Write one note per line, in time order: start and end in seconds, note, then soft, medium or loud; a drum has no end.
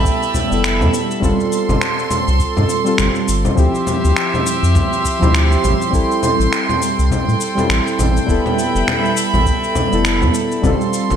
0.00 0.46 G3 medium
0.00 0.47 B3 medium
0.00 0.48 E4 medium
0.00 1.21 G4 medium
0.00 0.48 A4 medium
0.00 1.21 E5 medium
0.00 1.19 A5 medium
0.00 1.20 B5 medium
0.05 kick loud
0.05 shaker soft
0.23 shaker soft
0.34 kick medium
0.34 low conga medium
0.34 shaker medium
0.49 0.82 F1 medium
0.49 1.19 G3 medium
0.49 1.19 B3 medium
0.49 1.20 E4 medium
0.49 shaker soft
0.54 1.21 A4 medium
0.64 finger snap loud
0.64 shaker soft
0.80 0.89 F2 loud
0.80 low conga medium
0.80 shaker soft
0.94 shaker medium
1.11 shaker soft
1.20 1.33 G1 medium
1.20 2.81 G3 medium
1.20 2.82 C4 medium
1.20 2.83 F4 medium
1.20 3.55 A4 medium
1.20 3.55 C6 medium
1.20 kick loud
1.20 low conga medium
1.20 shaker soft
1.25 2.84 A4 medium
1.40 shaker soft
1.53 shaker medium
1.69 1.77 G1 medium
1.69 low conga medium
1.69 shaker soft
1.81 finger snap medium
1.81 shaker soft
1.99 shaker soft
2.11 low conga medium
2.11 shaker medium
2.28 2.45 C2 medium
2.28 shaker soft
2.40 kick loud
2.40 shaker soft
2.57 2.65 G2 medium
2.57 low conga medium
2.57 shaker soft
2.69 shaker medium
2.84 3.54 G3 medium
2.84 3.54 C4 medium
2.84 3.55 F4 medium
2.84 shaker soft
2.89 3.56 A4 medium
2.98 3.10 G1 medium
2.98 finger snap medium
2.98 low conga medium
2.98 shaker soft
3.15 shaker soft
3.28 3.49 G1 medium
3.28 shaker medium
3.45 low conga medium
3.45 shaker soft
3.55 3.69 D2 medium
3.55 5.16 F3 medium
3.55 5.17 C4 medium
3.55 5.18 E4 medium
3.55 5.91 G4 medium
3.55 5.91 E5 medium
3.55 8.25 C6 medium
3.55 kick loud
3.55 shaker soft
3.59 5.19 G4 medium
3.75 shaker soft
3.87 low conga medium
3.87 shaker medium
4.05 4.13 D2 loud
4.05 shaker soft
4.17 finger snap loud
4.17 shaker soft
4.34 low conga medium
4.34 shaker soft
4.47 shaker medium
4.63 4.80 F2 medium
4.63 shaker soft
4.75 kick loud
4.75 low conga medium
4.75 shaker soft
4.93 shaker soft
5.05 kick medium
5.05 shaker medium
5.19 5.57 D2 medium
5.19 5.89 F3 medium
5.19 5.90 C4 medium
5.19 5.90 E4 medium
5.19 low conga medium
5.19 shaker soft
5.24 5.91 G4 medium
5.34 finger snap loud
5.34 shaker soft
5.52 shaker soft
5.64 5.75 A1 loud
5.64 low conga medium
5.64 shaker medium
5.82 shaker soft
5.90 6.04 A1 medium
5.90 7.52 G3 medium
5.90 7.52 C4 medium
5.90 7.53 E4 medium
5.90 11.16 A4 medium
5.90 10.60 G5 medium
5.90 kick loud
5.90 shaker soft
5.95 7.54 A4 medium
6.12 shaker soft
6.23 low conga medium
6.23 shaker medium
6.40 6.48 A1 loud
6.40 shaker soft
6.53 finger snap medium
6.53 shaker soft
6.69 low conga medium
6.69 shaker soft
6.82 shaker medium
6.99 7.16 C2 medium
6.99 shaker soft
7.11 kick loud
7.11 low conga medium
7.11 shaker soft
7.28 7.36 A2 medium
7.28 shaker soft
7.41 shaker medium
7.55 8.24 G3 medium
7.55 8.25 C4 medium
7.55 8.26 E4 medium
7.55 low conga medium
7.55 shaker soft
7.60 8.27 A4 medium
7.69 7.80 A1 medium
7.69 finger snap medium
7.69 shaker soft
7.87 shaker soft
7.99 8.20 A1 medium
7.99 low conga medium
7.99 shaker medium
8.17 shaker soft
8.26 8.39 F1 medium
8.26 9.88 G3 medium
8.26 9.88 B3 medium
8.26 9.89 E4 medium
8.26 10.62 E5 medium
8.26 10.62 B5 medium
8.26 kick loud
8.26 shaker soft
8.31 9.90 A4 medium
8.46 low conga medium
8.46 shaker soft
8.59 shaker medium
8.75 8.83 F1 loud
8.75 shaker soft
8.88 finger snap medium
8.88 low conga medium
8.88 shaker soft
9.05 shaker soft
9.17 shaker medium
9.34 9.51 A1 medium
9.34 low conga medium
9.34 shaker soft
9.46 kick loud
9.46 shaker soft
9.64 shaker soft
9.75 kick medium
9.75 low conga medium
9.75 shaker medium
9.90 10.24 F1 medium
9.90 10.60 G3 medium
9.90 10.60 B3 medium
9.90 10.61 E4 medium
9.90 shaker soft
9.95 10.62 A4 medium
10.05 finger snap medium
10.05 shaker soft
10.22 10.30 F2 loud
10.22 low conga medium
10.22 shaker soft
10.34 shaker medium
10.52 shaker soft
10.62 10.74 G1 medium
10.62 11.16 G3 medium
10.62 11.16 C4 medium
10.62 11.16 F4 medium
10.62 11.16 C6 medium
10.62 kick loud
10.62 low conga medium
10.62 shaker soft
10.67 11.16 A4 medium
10.81 shaker soft
10.94 shaker medium
11.10 11.16 G1 loud
11.10 low conga medium
11.10 shaker soft